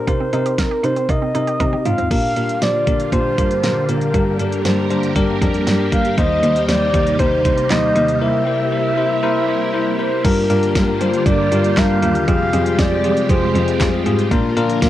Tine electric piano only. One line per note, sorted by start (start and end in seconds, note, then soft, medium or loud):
0.08 0.30 C4 medium
0.08 0.30 D#4 medium
0.08 0.30 A#4 loud
0.33 0.55 C4 medium
0.33 0.55 D#4 medium
0.33 0.55 A#4 loud
0.58 0.81 C4 medium
0.58 0.81 D#4 medium
0.58 0.81 A#4 medium
0.84 1.06 C4 medium
0.84 1.06 D#4 medium
0.84 1.06 A#4 medium
1.09 1.31 C4 medium
1.09 1.31 D#4 medium
1.09 1.32 A#4 medium
1.35 1.57 C4 medium
1.35 1.57 D#4 medium
1.35 1.57 A#4 medium
1.60 1.82 C4 medium
1.60 1.82 D#4 medium
1.60 1.82 G4 loud
1.85 2.08 C4 medium
1.85 2.08 D#4 medium
1.85 2.08 F4 medium
2.11 2.33 D4 loud
2.11 2.33 G4 medium
2.11 2.33 A#4 loud
2.36 2.59 D4 medium
2.36 2.59 G4 medium
2.36 2.59 A#4 medium
2.62 2.84 D4 medium
2.62 2.84 G4 medium
2.62 2.84 C5 medium
2.87 3.10 D4 medium
2.87 3.10 G4 medium
2.87 3.10 A#4 medium
3.13 3.35 D4 loud
3.13 3.35 G4 medium
3.13 3.35 C5 loud
3.38 3.60 D4 medium
3.38 3.60 G4 medium
3.38 3.60 A#4 medium
3.63 3.86 D4 medium
3.63 3.86 G4 medium
3.63 3.86 A#4 medium
3.89 4.11 D4 medium
3.89 4.11 G4 medium
3.89 4.11 A#4 medium
4.14 4.37 D4 loud
4.14 4.37 G4 medium
4.14 4.37 A#4 loud
4.40 4.62 D4 medium
4.40 4.62 G4 medium
4.40 4.62 A#4 medium
4.65 4.87 D4 medium
4.65 4.87 G4 medium
4.65 4.87 C5 medium
4.91 5.13 D4 medium
4.91 5.13 G4 medium
4.91 5.13 C5 loud
5.16 5.38 D4 loud
5.16 5.38 G4 loud
5.16 5.38 A#4 loud
5.41 5.64 D4 medium
5.41 5.64 G4 medium
5.41 5.64 A#4 loud
5.67 5.89 D4 medium
5.67 5.89 G4 medium
5.67 5.89 A#4 loud
5.92 6.15 D4 medium
5.92 6.15 G4 medium
5.92 6.15 A#4 medium
6.18 6.40 D#4 loud
6.18 6.40 G4 medium
6.18 6.40 C5 loud
6.43 6.66 D#4 medium
6.43 6.66 G4 medium
6.43 6.66 C5 medium
6.69 6.91 D#4 medium
6.69 6.91 G4 medium
6.69 6.91 C5 medium
6.94 7.16 D#4 medium
6.94 7.16 G4 medium
6.94 7.16 C5 medium
7.19 7.42 D#4 loud
7.19 7.42 G4 medium
7.19 7.42 C5 loud
7.45 7.67 D#4 medium
7.45 7.67 G4 medium
7.45 7.67 C5 medium
7.70 7.93 D#4 medium
7.70 7.93 G4 medium
7.70 7.93 C5 medium
7.96 8.18 D#4 medium
7.96 8.18 G4 medium
7.96 8.18 C5 medium
8.21 8.44 E4 loud
8.21 8.44 A#4 medium
8.21 8.44 C5 loud
8.47 8.69 E4 medium
8.47 8.69 A#4 medium
8.47 8.69 C5 medium
8.72 8.94 E4 medium
8.72 8.94 A#4 medium
8.72 8.94 C5 medium
8.97 9.20 E4 medium
8.97 9.20 A#4 medium
8.97 9.20 C5 loud
9.23 9.45 E4 loud
9.23 9.45 A#4 loud
9.23 9.45 C5 loud
9.48 9.71 E4 medium
9.48 9.71 A#4 medium
9.48 9.71 C5 loud
9.74 9.96 E4 medium
9.74 9.96 A#4 medium
9.74 9.96 C5 loud
9.99 10.21 E4 medium
9.99 10.21 A#4 medium
9.99 10.21 C5 loud
10.24 10.47 D4 loud
10.24 10.47 F4 medium
10.24 10.47 G4 medium
10.24 10.47 A#4 loud
10.50 10.72 D4 loud
10.50 10.72 F4 medium
10.50 10.72 G4 medium
10.50 10.72 A#4 loud
10.75 10.98 D4 medium
10.75 10.98 F4 medium
10.75 10.98 G4 medium
10.75 10.98 A#4 medium
11.01 11.23 D4 medium
11.01 11.23 F4 medium
11.01 11.23 G4 medium
11.01 11.23 A#4 medium
11.26 11.49 D4 medium
11.26 11.49 F4 medium
11.26 11.49 G4 medium
11.26 11.49 A#4 medium
11.52 11.74 D4 medium
11.52 11.74 F4 medium
11.52 11.74 G4 medium
11.52 11.74 A#4 medium
11.77 11.99 D4 loud
11.77 11.99 F4 medium
11.77 11.99 G4 medium
11.77 11.99 A#4 loud
12.02 12.25 D4 medium
12.02 12.25 F4 medium
12.02 12.25 G4 medium
12.02 12.25 A#4 medium
12.28 12.50 C4 loud
12.28 12.50 F4 medium
12.28 12.50 G4 medium
12.28 12.50 G#4 loud
12.53 12.76 C4 loud
12.53 12.76 F4 medium
12.53 12.76 G4 medium
12.53 12.76 G#4 loud
12.79 13.01 C4 medium
12.79 13.01 F4 medium
12.79 13.01 G4 medium
12.79 13.01 G#4 medium
13.04 13.27 C4 medium
13.04 13.27 F4 medium
13.04 13.27 G4 medium
13.04 13.27 G#4 medium
13.30 13.52 C4 medium
13.30 13.52 F4 medium
13.30 13.52 G4 medium
13.30 13.52 G#4 medium
13.55 13.77 C4 medium
13.55 13.77 F4 medium
13.55 13.77 G4 medium
13.55 13.77 G#4 medium
13.81 14.03 C4 loud
13.81 14.03 F4 medium
13.81 14.03 G4 medium
13.81 14.03 G#4 loud
14.06 14.28 C4 medium
14.06 14.28 F4 medium
14.06 14.28 G4 medium
14.06 14.28 G#4 loud
14.31 14.54 A#3 loud
14.31 14.54 D4 loud
14.31 14.54 F4 loud
14.31 14.54 A#4 loud
14.57 14.79 A#3 loud
14.57 14.79 D4 loud
14.57 14.79 F4 loud
14.57 14.79 A#4 loud
14.82 14.89 A#3 medium
14.82 14.89 D4 medium
14.82 14.89 F4 medium
14.82 14.89 A#4 loud